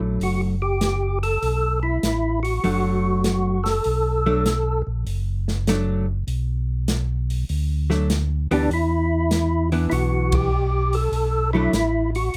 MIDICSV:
0, 0, Header, 1, 5, 480
1, 0, Start_track
1, 0, Key_signature, 2, "minor"
1, 0, Tempo, 606673
1, 1124, Time_signature, 4, 2, 24, 8
1, 9786, End_track
2, 0, Start_track
2, 0, Title_t, "Tonewheel organ"
2, 0, Program_c, 0, 16
2, 184, Note_on_c, 0, 66, 75
2, 326, Note_off_c, 0, 66, 0
2, 490, Note_on_c, 0, 67, 92
2, 939, Note_off_c, 0, 67, 0
2, 974, Note_on_c, 0, 69, 98
2, 1421, Note_off_c, 0, 69, 0
2, 1447, Note_on_c, 0, 64, 76
2, 1898, Note_off_c, 0, 64, 0
2, 1922, Note_on_c, 0, 66, 78
2, 2877, Note_on_c, 0, 69, 93
2, 2916, Note_off_c, 0, 66, 0
2, 3813, Note_off_c, 0, 69, 0
2, 6751, Note_on_c, 0, 62, 78
2, 6885, Note_off_c, 0, 62, 0
2, 6911, Note_on_c, 0, 64, 94
2, 7674, Note_off_c, 0, 64, 0
2, 7830, Note_on_c, 0, 64, 61
2, 7851, Note_on_c, 0, 66, 76
2, 7856, Note_off_c, 0, 64, 0
2, 8185, Note_off_c, 0, 66, 0
2, 8189, Note_on_c, 0, 67, 85
2, 8661, Note_on_c, 0, 69, 89
2, 8675, Note_off_c, 0, 67, 0
2, 9105, Note_off_c, 0, 69, 0
2, 9125, Note_on_c, 0, 64, 92
2, 9577, Note_off_c, 0, 64, 0
2, 9619, Note_on_c, 0, 66, 78
2, 9786, Note_off_c, 0, 66, 0
2, 9786, End_track
3, 0, Start_track
3, 0, Title_t, "Hollow-body jazz guitar"
3, 0, Program_c, 1, 26
3, 0, Note_on_c, 1, 54, 46
3, 0, Note_on_c, 1, 57, 54
3, 0, Note_on_c, 1, 62, 64
3, 426, Note_off_c, 1, 54, 0
3, 430, Note_off_c, 1, 57, 0
3, 432, Note_off_c, 1, 62, 0
3, 2088, Note_on_c, 1, 54, 59
3, 2092, Note_on_c, 1, 57, 57
3, 2096, Note_on_c, 1, 62, 57
3, 2828, Note_off_c, 1, 54, 0
3, 2830, Note_off_c, 1, 57, 0
3, 2832, Note_off_c, 1, 62, 0
3, 3374, Note_on_c, 1, 54, 60
3, 3374, Note_on_c, 1, 57, 62
3, 3379, Note_on_c, 1, 62, 61
3, 3510, Note_off_c, 1, 54, 0
3, 3511, Note_off_c, 1, 57, 0
3, 3513, Note_off_c, 1, 62, 0
3, 4500, Note_on_c, 1, 54, 46
3, 4502, Note_on_c, 1, 57, 53
3, 4506, Note_on_c, 1, 62, 57
3, 4787, Note_off_c, 1, 54, 0
3, 4788, Note_off_c, 1, 57, 0
3, 4790, Note_off_c, 1, 62, 0
3, 6249, Note_on_c, 1, 54, 48
3, 6254, Note_on_c, 1, 57, 61
3, 6260, Note_on_c, 1, 62, 52
3, 6389, Note_off_c, 1, 54, 0
3, 6391, Note_off_c, 1, 57, 0
3, 6394, Note_off_c, 1, 62, 0
3, 6735, Note_on_c, 1, 52, 66
3, 6735, Note_on_c, 1, 59, 60
3, 6740, Note_on_c, 1, 62, 61
3, 6742, Note_on_c, 1, 67, 70
3, 6872, Note_off_c, 1, 52, 0
3, 6872, Note_off_c, 1, 59, 0
3, 6874, Note_off_c, 1, 62, 0
3, 6875, Note_off_c, 1, 67, 0
3, 7692, Note_on_c, 1, 52, 54
3, 7697, Note_on_c, 1, 59, 56
3, 7703, Note_on_c, 1, 62, 57
3, 8295, Note_off_c, 1, 52, 0
3, 8297, Note_off_c, 1, 59, 0
3, 8300, Note_off_c, 1, 62, 0
3, 9134, Note_on_c, 1, 54, 63
3, 9142, Note_on_c, 1, 57, 64
3, 9150, Note_on_c, 1, 62, 62
3, 9271, Note_off_c, 1, 54, 0
3, 9275, Note_off_c, 1, 57, 0
3, 9278, Note_off_c, 1, 62, 0
3, 9786, End_track
4, 0, Start_track
4, 0, Title_t, "Tonewheel organ"
4, 0, Program_c, 2, 16
4, 3, Note_on_c, 2, 34, 64
4, 149, Note_off_c, 2, 34, 0
4, 160, Note_on_c, 2, 30, 81
4, 1091, Note_off_c, 2, 30, 0
4, 1128, Note_on_c, 2, 35, 68
4, 1575, Note_off_c, 2, 35, 0
4, 1609, Note_on_c, 2, 33, 69
4, 2055, Note_off_c, 2, 33, 0
4, 2092, Note_on_c, 2, 30, 80
4, 3017, Note_off_c, 2, 30, 0
4, 3050, Note_on_c, 2, 35, 72
4, 3823, Note_off_c, 2, 35, 0
4, 3852, Note_on_c, 2, 34, 64
4, 3994, Note_off_c, 2, 34, 0
4, 4007, Note_on_c, 2, 30, 90
4, 4935, Note_off_c, 2, 30, 0
4, 4962, Note_on_c, 2, 35, 69
4, 5892, Note_off_c, 2, 35, 0
4, 5932, Note_on_c, 2, 38, 74
4, 6704, Note_off_c, 2, 38, 0
4, 6734, Note_on_c, 2, 38, 54
4, 6875, Note_off_c, 2, 38, 0
4, 6882, Note_on_c, 2, 40, 73
4, 7812, Note_off_c, 2, 40, 0
4, 7849, Note_on_c, 2, 35, 87
4, 8775, Note_off_c, 2, 35, 0
4, 8796, Note_on_c, 2, 35, 67
4, 9249, Note_off_c, 2, 35, 0
4, 9281, Note_on_c, 2, 33, 73
4, 9731, Note_off_c, 2, 33, 0
4, 9786, End_track
5, 0, Start_track
5, 0, Title_t, "Drums"
5, 167, Note_on_c, 9, 46, 39
5, 246, Note_off_c, 9, 46, 0
5, 641, Note_on_c, 9, 42, 52
5, 642, Note_on_c, 9, 38, 61
5, 720, Note_off_c, 9, 42, 0
5, 721, Note_off_c, 9, 38, 0
5, 975, Note_on_c, 9, 46, 38
5, 1055, Note_off_c, 9, 46, 0
5, 1128, Note_on_c, 9, 46, 42
5, 1207, Note_off_c, 9, 46, 0
5, 1608, Note_on_c, 9, 42, 47
5, 1609, Note_on_c, 9, 38, 59
5, 1687, Note_off_c, 9, 42, 0
5, 1688, Note_off_c, 9, 38, 0
5, 1935, Note_on_c, 9, 46, 35
5, 2014, Note_off_c, 9, 46, 0
5, 2088, Note_on_c, 9, 46, 40
5, 2167, Note_off_c, 9, 46, 0
5, 2565, Note_on_c, 9, 42, 47
5, 2566, Note_on_c, 9, 38, 63
5, 2644, Note_off_c, 9, 42, 0
5, 2645, Note_off_c, 9, 38, 0
5, 2894, Note_on_c, 9, 38, 40
5, 2894, Note_on_c, 9, 46, 40
5, 2973, Note_off_c, 9, 38, 0
5, 2973, Note_off_c, 9, 46, 0
5, 3039, Note_on_c, 9, 46, 41
5, 3118, Note_off_c, 9, 46, 0
5, 3526, Note_on_c, 9, 42, 52
5, 3527, Note_on_c, 9, 38, 60
5, 3605, Note_off_c, 9, 42, 0
5, 3606, Note_off_c, 9, 38, 0
5, 4009, Note_on_c, 9, 46, 45
5, 4088, Note_off_c, 9, 46, 0
5, 4336, Note_on_c, 9, 38, 41
5, 4415, Note_off_c, 9, 38, 0
5, 4489, Note_on_c, 9, 42, 46
5, 4490, Note_on_c, 9, 38, 66
5, 4568, Note_off_c, 9, 42, 0
5, 4569, Note_off_c, 9, 38, 0
5, 4966, Note_on_c, 9, 46, 41
5, 5045, Note_off_c, 9, 46, 0
5, 5444, Note_on_c, 9, 42, 53
5, 5445, Note_on_c, 9, 38, 61
5, 5523, Note_off_c, 9, 42, 0
5, 5524, Note_off_c, 9, 38, 0
5, 5777, Note_on_c, 9, 46, 37
5, 5856, Note_off_c, 9, 46, 0
5, 5927, Note_on_c, 9, 46, 37
5, 6006, Note_off_c, 9, 46, 0
5, 6255, Note_on_c, 9, 38, 32
5, 6334, Note_off_c, 9, 38, 0
5, 6408, Note_on_c, 9, 38, 61
5, 6408, Note_on_c, 9, 42, 53
5, 6487, Note_off_c, 9, 42, 0
5, 6488, Note_off_c, 9, 38, 0
5, 6737, Note_on_c, 9, 46, 40
5, 6816, Note_off_c, 9, 46, 0
5, 6892, Note_on_c, 9, 46, 37
5, 6971, Note_off_c, 9, 46, 0
5, 7366, Note_on_c, 9, 42, 49
5, 7367, Note_on_c, 9, 38, 66
5, 7445, Note_off_c, 9, 42, 0
5, 7446, Note_off_c, 9, 38, 0
5, 7690, Note_on_c, 9, 46, 33
5, 7769, Note_off_c, 9, 46, 0
5, 7844, Note_on_c, 9, 46, 44
5, 7923, Note_off_c, 9, 46, 0
5, 8167, Note_on_c, 9, 51, 63
5, 8171, Note_on_c, 9, 36, 68
5, 8246, Note_off_c, 9, 51, 0
5, 8250, Note_off_c, 9, 36, 0
5, 8647, Note_on_c, 9, 46, 39
5, 8726, Note_off_c, 9, 46, 0
5, 8804, Note_on_c, 9, 46, 42
5, 8883, Note_off_c, 9, 46, 0
5, 9284, Note_on_c, 9, 42, 49
5, 9285, Note_on_c, 9, 38, 60
5, 9363, Note_off_c, 9, 42, 0
5, 9364, Note_off_c, 9, 38, 0
5, 9613, Note_on_c, 9, 46, 36
5, 9692, Note_off_c, 9, 46, 0
5, 9762, Note_on_c, 9, 46, 42
5, 9786, Note_off_c, 9, 46, 0
5, 9786, End_track
0, 0, End_of_file